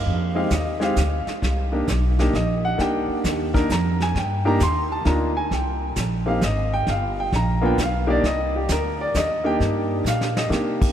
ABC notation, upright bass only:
X:1
M:3/4
L:1/8
Q:"Swing" 1/4=132
K:Cm
V:1 name="Upright bass" clef=bass
F,,2 E,,2 D,, z | C,,2 =B,,,2 _B,,,2 | C,, z E,,2 F,,2 | G,,2 E,,2 D,,2 |
C,,2 B,,,2 A,,,2 | G,,,2 ^A,,,2 =B,,,2 | C,,2 D,,2 E,,2 | G,,2 B,,2 C,2 |]